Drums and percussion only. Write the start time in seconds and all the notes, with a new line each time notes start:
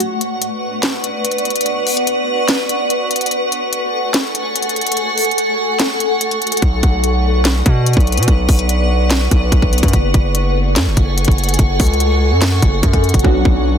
0.00 closed hi-hat
0.21 closed hi-hat
0.42 closed hi-hat
0.83 snare, clap, closed hi-hat
1.04 closed hi-hat
1.25 closed hi-hat
1.31 closed hi-hat
1.38 closed hi-hat
1.45 closed hi-hat
1.50 closed hi-hat
1.56 closed hi-hat
1.61 closed hi-hat
1.66 closed hi-hat
1.87 closed hi-hat, open hi-hat
1.97 closed hi-hat
2.07 closed hi-hat
2.48 snare, clap, closed hi-hat
2.69 closed hi-hat
2.90 closed hi-hat
3.11 closed hi-hat
3.16 closed hi-hat
3.21 closed hi-hat
3.26 closed hi-hat
3.31 closed hi-hat
3.52 closed hi-hat
3.73 closed hi-hat
4.14 snare, clap, closed hi-hat
4.35 closed hi-hat
4.56 closed hi-hat
4.62 closed hi-hat
4.69 closed hi-hat
4.76 closed hi-hat
4.81 closed hi-hat
4.87 closed hi-hat
4.92 closed hi-hat
4.97 closed hi-hat
5.18 closed hi-hat, open hi-hat
5.24 closed hi-hat
5.31 closed hi-hat
5.38 closed hi-hat
5.79 snare, clap, closed hi-hat
6.00 closed hi-hat
6.21 closed hi-hat
6.31 closed hi-hat
6.42 closed hi-hat
6.47 closed hi-hat
6.52 closed hi-hat
6.57 closed hi-hat
6.62 kick, closed hi-hat
6.83 kick, closed hi-hat
7.04 closed hi-hat
7.45 snare, clap, closed hi-hat
7.66 kick, closed hi-hat
7.86 closed hi-hat
7.93 kick, closed hi-hat
8.00 closed hi-hat
8.07 closed hi-hat
8.12 closed hi-hat
8.18 closed hi-hat
8.23 closed hi-hat
8.28 kick, closed hi-hat
8.49 kick, closed hi-hat, open hi-hat
8.59 closed hi-hat
8.69 closed hi-hat
9.10 snare, clap, closed hi-hat
9.31 kick, closed hi-hat
9.52 kick, closed hi-hat
9.62 kick
9.73 closed hi-hat
9.78 closed hi-hat
9.83 kick, closed hi-hat
9.88 closed hi-hat
9.93 kick, closed hi-hat
10.14 kick, closed hi-hat
10.35 closed hi-hat
10.76 snare, clap, closed hi-hat
10.97 kick, closed hi-hat
11.18 closed hi-hat
11.25 kick, closed hi-hat
11.31 closed hi-hat
11.38 closed hi-hat
11.44 closed hi-hat
11.49 closed hi-hat
11.54 closed hi-hat
11.59 kick, closed hi-hat
11.80 kick, closed hi-hat, open hi-hat
11.87 closed hi-hat
11.93 closed hi-hat
12.00 closed hi-hat
12.41 snare, clap, closed hi-hat
12.62 kick, closed hi-hat
12.83 kick, closed hi-hat
12.93 kick, closed hi-hat
13.04 closed hi-hat
13.09 closed hi-hat
13.14 kick, closed hi-hat
13.19 closed hi-hat
13.24 kick
13.45 kick